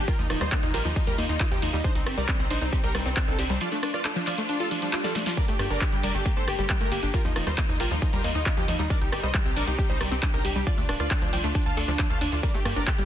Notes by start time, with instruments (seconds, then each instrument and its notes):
Already playing: string section A#3
0.08 string section D#3 G3 F4, synth arpeggio sound F4, supersaw synth G4 A#4, digital synth lead A#4, kick, closed hi-hat
0.19 analog synth bass D#2, synth arpeggio sound F3, supersaw synth D#4, digital synth lead D#4, closed hi-hat
0.30 analog synth bass D#1, synth arpeggio sound F3, digital synth lead D#4, supersaw synth D#4, cross-stick, open hi-hat, ride
0.41 analog synth bass D#2, synth arpeggio sound G3, supersaw synth D#4 C5, digital synth lead C5, cross-stick, closed hi-hat
0.52 synth arpeggio sound A#3, digital synth lead D#4, supersaw synth D#4, kick, clap, closed hi-hat
0.63 analog synth bass D#2, synth arpeggio sound D#4, digital synth lead D#4, supersaw synth D#4, closed hi-hat
0.74 analog synth bass A#1, synth arpeggio sound F4, supersaw synth G4 A#4, digital synth lead A#4, open hi-hat, ride
0.85 analog synth bass D#2, synth arpeggio sound F3, digital synth lead D#4, supersaw synth D#4, closed hi-hat
0.96 synth arpeggio sound F3, digital synth lead D#4, supersaw synth D#4, kick, closed hi-hat
1.07 analog synth bass D#2, synth arpeggio sound G3, supersaw synth G4 A#4, digital synth lead A#4, closed hi-hat
1.18 analog synth bass D#2, synth arpeggio sound A#3, supersaw synth D#4, digital synth lead D#4, open hi-hat, ride
1.29 analog synth bass D#2, digital synth lead D#4, synth arpeggio sound D#4, supersaw synth D#4, closed hi-hat
1.40 supersaw synth D#4, digital synth lead D#4, synth arpeggio sound F4, kick, clap, closed hi-hat
1.51 analog synth bass D#2, synth arpeggio sound F3, supersaw synth D#4 G4, digital synth lead G4, closed hi-hat
1.62 analog synth bass D#2, synth arpeggio sound F3, supersaw synth D#4, digital synth lead D#4, open hi-hat, ride
1.73 analog synth bass D#2, synth arpeggio sound G3, supersaw synth D#4, digital synth lead D#4, closed hi-hat
1.84 string section G3 C4 D4 D#4, synth arpeggio sound D4, supersaw synth D#4 C5, digital synth lead C5, kick, closed hi-hat
1.95 analog synth bass C2, supersaw synth C4, digital synth lead C4, synth arpeggio sound D#4, closed hi-hat
2.06 analog synth bass G1, digital synth lead C4, supersaw synth C4, synth arpeggio sound G4, cross-stick, open hi-hat, ride
2.17 analog synth bass C2, synth arpeggio sound G3, supersaw synth A#4 D5, digital synth lead D5, closed hi-hat
2.28 synth arpeggio sound G3, digital synth lead C4, supersaw synth C4, kick, clap, closed hi-hat
2.40 analog synth bass C2, synth arpeggio sound C4, digital synth lead C4, supersaw synth C4, closed hi-hat
2.51 analog synth bass A#1, synth arpeggio sound D4, supersaw synth D#4 C5, digital synth lead C5, open hi-hat, ride
2.62 analog synth bass C2, digital synth lead C4, supersaw synth C4, synth arpeggio sound D#4, closed hi-hat
2.73 supersaw synth C4, digital synth lead C4, synth arpeggio sound G4, kick, closed hi-hat
2.83 analog synth bass C2, synth arpeggio sound G3, supersaw synth G4 A#4, digital synth lead A#4, closed hi-hat
2.95 analog synth bass C2, synth arpeggio sound G3, supersaw synth C4, digital synth lead C4, cross-stick, open hi-hat, ride
3.06 analog synth bass C2, supersaw synth C4, synth arpeggio sound C4, digital synth lead C4, closed hi-hat
3.17 supersaw synth C4, digital synth lead C4, synth arpeggio sound D4, kick, clap, closed hi-hat
3.28 analog synth bass C2, supersaw synth C4 A4, synth arpeggio sound D#4, digital synth lead A4, closed hi-hat
3.39 analog synth bass C2, supersaw synth C4, digital synth lead C4, synth arpeggio sound G4, open hi-hat, ride
3.50 analog synth bass C2, synth arpeggio sound G3, digital synth lead C4, supersaw synth C4, closed hi-hat
3.61 string section F3 A3 F4, synth arpeggio sound F3, supersaw synth F4 D5, digital synth lead D5, closed hi-hat
3.72 synth arpeggio sound A3, digital synth lead D4, supersaw synth D4, closed hi-hat
3.83 digital synth lead D4, synth arpeggio sound D4, supersaw synth D4, cross-stick, open hi-hat, ride
3.94 synth arpeggio sound F4, supersaw synth F4 D5, digital synth lead D5, cross-stick, closed hi-hat
4.05 digital synth lead D4, supersaw synth D4, synth arpeggio sound A4, clap, closed hi-hat
4.16 synth arpeggio sound F3, digital synth lead D4, supersaw synth D4, closed hi-hat
4.27 synth arpeggio sound F3, supersaw synth F4 D5, digital synth lead D5, clap, open hi-hat, ride
4.38 synth arpeggio sound A3, digital synth lead D4, supersaw synth D4, closed hi-hat
4.49 digital synth lead D4, synth arpeggio sound D4, supersaw synth D4, closed hi-hat, swell
4.60 synth arpeggio sound F4, supersaw synth F4 A4, digital synth lead A4, closed hi-hat
4.71 synth arpeggio sound F3, digital synth lead D4, supersaw synth D4, open hi-hat, ride
4.82 synth arpeggio sound F3, digital synth lead D4, supersaw synth D4, closed hi-hat
4.93 digital synth lead D4, supersaw synth D4, synth arpeggio sound F4, clap, closed hi-hat
5.04 supersaw synth F4 A4, digital synth lead A4, synth arpeggio sound D5, snare, closed hi-hat
5.15 synth arpeggio sound A3, digital synth lead D4, supersaw synth D4, snare, open hi-hat, ride
5.26 digital synth lead D4, supersaw synth D4, synth arpeggio sound F4, snare, closed hi-hat
5.37 synth arpeggio sound G3, string section A#3 G4, supersaw synth A#4 D5, digital synth lead D5, kick, closed hi-hat
5.48 analog synth bass G1, synth arpeggio sound A3, digital synth lead G4, supersaw synth G4, closed hi-hat
5.59 analog synth bass G2, synth arpeggio sound A#3, digital synth lead G4, supersaw synth G4, cross-stick, open hi-hat, ride
5.70 analog synth bass G1, synth arpeggio sound D4, supersaw synth A#4 D5, digital synth lead D5, closed hi-hat
5.81 digital synth lead G4, synth arpeggio sound G4, supersaw synth G4, kick, clap, closed hi-hat
5.92 analog synth bass G1, synth arpeggio sound G3, digital synth lead G4, supersaw synth G4, closed hi-hat
6.03 analog synth bass F1, synth arpeggio sound G3, supersaw synth A#4 D5, digital synth lead D5, open hi-hat, ride
6.14 analog synth bass G1, synth arpeggio sound A3, digital synth lead G4, supersaw synth G4, closed hi-hat
6.25 synth arpeggio sound A#3, digital synth lead G4, supersaw synth G4, kick, closed hi-hat
6.37 analog synth bass G1, synth arpeggio sound D4, supersaw synth A4 C5, digital synth lead C5, closed hi-hat
6.47 analog synth bass G1, digital synth lead G4, synth arpeggio sound G4, supersaw synth G4, cross-stick, open hi-hat, ride
6.59 analog synth bass G1, synth arpeggio sound G3, digital synth lead G4, supersaw synth G4, closed hi-hat
6.70 synth arpeggio sound G3, digital synth lead G4, supersaw synth G4, kick, clap, closed hi-hat
6.81 analog synth bass G1, synth arpeggio sound A3, supersaw synth G4 A#4, digital synth lead A#4, closed hi-hat
6.92 analog synth bass G1, synth arpeggio sound A#3, digital synth lead G4, supersaw synth G4, open hi-hat, ride
7.03 analog synth bass G1, synth arpeggio sound D4, digital synth lead G4, supersaw synth G4, closed hi-hat
7.14 string section D#3 G3 F4, synth arpeggio sound F4, supersaw synth G4 A#4, digital synth lead A#4, kick, closed hi-hat
7.25 analog synth bass D#2, synth arpeggio sound F3, digital synth lead D#4, supersaw synth D#4, closed hi-hat
7.36 analog synth bass D#1, synth arpeggio sound F3, digital synth lead D#4, supersaw synth D#4, cross-stick, open hi-hat, ride
7.47 analog synth bass D#2, synth arpeggio sound G3, supersaw synth D#4 C5, digital synth lead C5, cross-stick, closed hi-hat
7.58 synth arpeggio sound A#3, digital synth lead D#4, kick, clap, closed hi-hat
7.69 analog synth bass D#2, digital synth lead D#4, synth arpeggio sound D#4, supersaw synth D#4, closed hi-hat
7.80 analog synth bass A#1, synth arpeggio sound F4, supersaw synth G4 A#4, digital synth lead A#4, open hi-hat, ride
7.91 analog synth bass D#2, synth arpeggio sound F3, digital synth lead D#4, supersaw synth D#4, closed hi-hat
8.02 synth arpeggio sound F3, digital synth lead D#4, supersaw synth D#4, kick, closed hi-hat
8.13 analog synth bass D#2, synth arpeggio sound G3, supersaw synth G4 A#4, digital synth lead A#4, closed hi-hat
8.24 analog synth bass D#2, synth arpeggio sound A#3, digital synth lead D#4, supersaw synth D#4, open hi-hat, ride
8.35 analog synth bass D#2, digital synth lead D#4, supersaw synth D#4, synth arpeggio sound D#4, closed hi-hat
8.46 digital synth lead D#4, supersaw synth D#4, synth arpeggio sound F4, kick, clap, closed hi-hat
8.57 analog synth bass D#2, synth arpeggio sound F3, supersaw synth D#4 G4, digital synth lead G4, closed hi-hat
8.68 analog synth bass D#2, synth arpeggio sound F3, digital synth lead D#4, supersaw synth D#4, open hi-hat, ride
8.79 analog synth bass D#2, synth arpeggio sound G3, digital synth lead D#4, supersaw synth D#4, closed hi-hat
8.90 string section C4 D4 D#4, synth arpeggio sound D4, supersaw synth A#4 D5, digital synth lead D5, kick, closed hi-hat
9.01 analog synth bass C2, synth arpeggio sound D#4, digital synth lead G4, supersaw synth G4, closed hi-hat
9.12 analog synth bass G1, digital synth lead G4, synth arpeggio sound G4, supersaw synth G4, cross-stick, open hi-hat, ride
9.23 analog synth bass C2, synth arpeggio sound G3, supersaw synth C5 D#5, digital synth lead D#5, closed hi-hat
9.34 synth arpeggio sound G3, digital synth lead G4, supersaw synth G4, kick, clap, closed hi-hat
9.45 analog synth bass C2, synth arpeggio sound C4, digital synth lead G4, supersaw synth G4, closed hi-hat
9.56 analog synth bass A#1, synth arpeggio sound D4, supersaw synth A#4 D5, digital synth lead D5, open hi-hat, ride
9.67 analog synth bass C2, synth arpeggio sound D#4, digital synth lead G4, supersaw synth G4, closed hi-hat
9.78 digital synth lead G4, synth arpeggio sound G4, supersaw synth G4, kick, closed hi-hat
9.89 analog synth bass C2, synth arpeggio sound G3, supersaw synth D#4 C5, digital synth lead C5, closed hi-hat
10.01 analog synth bass C2, synth arpeggio sound G3, digital synth lead G4, supersaw synth G4, cross-stick, open hi-hat, ride
10.12 analog synth bass C2, synth arpeggio sound C4, digital synth lead G4, supersaw synth G4, closed hi-hat
10.23 synth arpeggio sound D4, digital synth lead G4, supersaw synth G4, kick, clap, closed hi-hat
10.34 analog synth bass C2, synth arpeggio sound D#4, supersaw synth G4 A#4, digital synth lead A#4, closed hi-hat
10.45 analog synth bass C2, supersaw synth G4, synth arpeggio sound G4, digital synth lead G4, open hi-hat, ride
10.56 analog synth bass C2, synth arpeggio sound G3, digital synth lead G4, supersaw synth G4, closed hi-hat
10.67 synth arpeggio sound F3, string section F3 A3 F4, supersaw synth F4 D5, digital synth lead D5, kick, closed hi-hat
10.78 analog synth bass D2, synth arpeggio sound A3, digital synth lead D4, supersaw synth D4, closed hi-hat
10.89 analog synth bass D1, digital synth lead D4, synth arpeggio sound D4, supersaw synth D4, cross-stick, open hi-hat, ride
11.00 analog synth bass D2, supersaw synth F4 D5, synth arpeggio sound F4, digital synth lead D5, cross-stick, closed hi-hat
11.11 digital synth lead D4, supersaw synth D4, synth arpeggio sound A4, kick, clap, closed hi-hat
11.22 analog synth bass D2, synth arpeggio sound F3, supersaw synth D4, digital synth lead D4, closed hi-hat
11.33 analog synth bass C2, synth arpeggio sound F3, supersaw synth D5 G5, digital synth lead G5, open hi-hat, ride
11.44 analog synth bass D2, synth arpeggio sound A3, digital synth lead D4, supersaw synth D4, closed hi-hat
11.55 digital synth lead D4, supersaw synth D4, synth arpeggio sound D4, kick, closed hi-hat
11.66 analog synth bass D2, synth arpeggio sound F4, supersaw synth F5 A5, digital synth lead A5, closed hi-hat
11.77 analog synth bass D2, digital synth lead D4, supersaw synth D4, synth arpeggio sound A4, open hi-hat, ride
11.88 analog synth bass D2, synth arpeggio sound F3, digital synth lead D4, supersaw synth D4, closed hi-hat
11.99 synth arpeggio sound F3, digital synth lead D4, supersaw synth D4, kick, clap, closed hi-hat
12.10 analog synth bass D2, synth arpeggio sound A3, supersaw synth F5 A5, digital synth lead A5, closed hi-hat
12.21 analog synth bass D#2, supersaw synth D4, synth arpeggio sound D4, digital synth lead D4, open hi-hat, ride
12.32 analog synth bass D2, supersaw synth D4, digital synth lead D4, synth arpeggio sound F4, closed hi-hat
12.43 synth arpeggio sound G3, string section A#3 G4, supersaw synth A#4 D5, digital synth lead D5, kick, closed hi-hat
12.54 analog synth bass G1, synth arpeggio sound A3, supersaw synth G4, digital synth lead G4, closed hi-hat
12.65 analog synth bass G2, synth arpeggio sound A#3, supersaw synth G4, digital synth lead G4, cross-stick, open hi-hat, ride
12.76 analog synth bass G1, synth arpeggio sound D4, supersaw synth A#4 D5, digital synth lead D5, closed hi-hat
12.87 synth arpeggio sound G4, supersaw synth G4, digital synth lead G4, kick, clap, closed hi-hat
12.98 analog synth bass G1, synth arpeggio sound G3, supersaw synth G4, digital synth lead G4, closed hi-hat